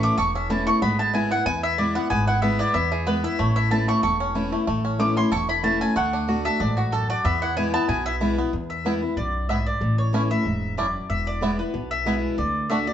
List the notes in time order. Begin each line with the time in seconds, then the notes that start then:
Already playing: A2 E3 A3 C#4 E4 A4
0.03 A3 D6
0.18 E1 E2 A4 C#6
0.35 C#4 E5
0.49 E3 A3 C#4 E4 A5
0.67 A3 C#4 E4 C#6
0.82 G#1 G#3 B3 B5
0.99 E4 A5
1.14 G#3 B3 E4 G#5
1.31 B3 E4 F#5
1.46 E2 B3 E4 G#5
1.63 E4 E5
1.78 G#3 B3 E4 D5
1.95 B3 E4 F#5
2.10 G#1 G#3 B3 G#5
2.27 E4 F#5
2.42 G#3 B3 E4 E5
2.59 E4 D5
2.74 E2 B3 E4 E5
2.92 E4 G#4
3.06 G#3 B3 E4 B4
3.23 B3 E4 E5
3.39 A1 A2 A3 C#5
3.56 E4 E5
3.71 E3 A3 C#4 E4 A4 A5
3.88 A3 C#4 E4 C#6
4.03 E1 E2 A4 C#6
4.20 C#4
4.35 E3 A3 C#4 E4
4.52 A3 C#4 E4
4.67 A1 A2 A3
4.85 C#4
4.99 E3 A3 C#4 E4 D6
5.16 C#4 E4 C6
5.31 E1 E2 A4 C#6
5.49 E4 B5
5.63 E3 A3 C#4 E4 A5
5.80 C#4 E4 A4 G#5
5.96 D2 D3 A3 F#5
6.13 D4
6.28 D3 A3 D4 F#4
6.45 D4 F#4 A4 E5
6.60 A1 G#2 D4 D5
6.77 F#4
6.92 F#2 A4
7.10 F#4 D5
7.24 E2 B3 E5
7.42 E4 F#5
7.56 E3 G#3 B3 E4 G#5
7.74 B3 E4 A5
7.88 B1 B2 E4 G#5
8.06 E4 E5
8.21 E3 G#3 B3 E4
8.38 B3 E4
8.53 E2
8.70 E5
8.85 E3 G#3 B3 E4
9.02 B3 E4
9.17 B1 F#2 D5
9.49 G#2 B3 E4 E5
9.66 D5
9.81 A1 A2
9.98 C#5
10.13 E3 A3 C#4 E4
10.30 C#4 E4 E5
10.45 E1 G#2
10.77 F#2 A3 C#4 E4 D5
11.10 E1 E2 E5
11.27 D5
11.41 E3 G#3 B3 E4
11.59 B3 E4 B4
11.74 B1 B2
11.91 E5
12.05 E3 G#3 B3 E4
12.38 D2 D3 D5
12.70 D3 A3 D4 F#4 E5
12.87 D4 F#4 D5